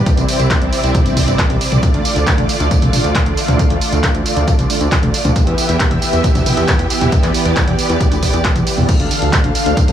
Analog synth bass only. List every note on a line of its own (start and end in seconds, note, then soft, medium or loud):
0.17 0.25 C2 medium
0.39 0.47 C2 medium
0.62 0.69 C2 medium
0.84 0.91 C2 medium
1.06 1.13 G1 medium
1.28 1.35 G1 medium
1.50 1.57 C2 medium
1.72 1.79 C2 medium
1.94 2.02 D2 medium
2.16 2.24 D2 medium
2.38 2.46 D2 medium
2.60 2.68 D2 medium
2.82 2.90 C2 medium
3.04 3.12 D2 medium
3.26 3.34 D2 medium
3.48 3.56 D2 medium
3.70 3.78 D2 medium
3.92 4.00 D2 medium
4.14 4.22 D2 medium
4.36 4.44 D2 medium
4.59 4.66 C2 medium
4.81 4.88 D2 medium
5.03 5.10 D2 medium
5.25 5.32 D2 medium
5.47 5.55 E2 medium
5.69 5.77 E2 medium
5.91 5.99 E2 medium
6.13 6.21 E2 medium
6.35 6.43 D2 medium
6.57 6.65 E2 medium
6.79 6.87 E2 medium
7.01 7.09 E2 medium
7.23 7.31 E2 medium
7.45 7.53 E2 medium
7.68 7.75 E2 medium
7.90 7.97 E2 medium
8.12 8.19 D2 medium
8.34 8.41 E2 medium
8.56 8.63 E2 medium
8.78 8.85 E2 medium
9.00 9.07 D2 medium
9.22 9.29 D2 medium
9.44 9.52 D2 medium
9.66 9.74 D2 medium
9.88 9.92 C2 medium